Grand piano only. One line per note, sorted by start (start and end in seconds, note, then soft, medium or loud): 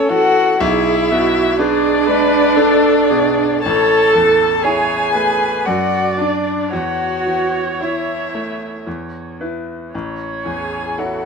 0.00 0.57 A2 medium
0.00 0.10 E3 medium
0.00 0.63 A3 medium
0.00 0.63 C#4 medium
0.00 0.63 C#5 medium
0.10 0.61 E3 medium
0.61 3.59 B1 loud
1.11 1.88 B2 medium
1.59 2.03 D4 medium
1.59 2.03 B4 medium
2.07 2.88 G#3 medium
2.57 3.06 D4 medium
2.57 3.06 B4 medium
3.11 3.64 B2 medium
3.65 5.62 A1 medium
4.15 4.94 E2 medium
4.64 5.10 E4 medium
4.64 5.10 C#5 medium
5.14 5.66 A3 soft
5.67 6.69 F#2 medium
6.21 6.69 D4 soft
6.21 6.69 D5 medium
6.73 8.83 E2 medium
7.27 8.13 E3 soft
7.81 8.30 E4 soft
7.81 8.30 C#5 soft
8.35 8.87 A3 soft
8.87 9.90 E2 medium
9.41 9.90 E4 soft
9.41 9.90 B4 soft
9.95 11.25 A1 medium
10.45 11.25 E2 soft
10.98 11.25 E4 soft
10.98 11.25 C#5 soft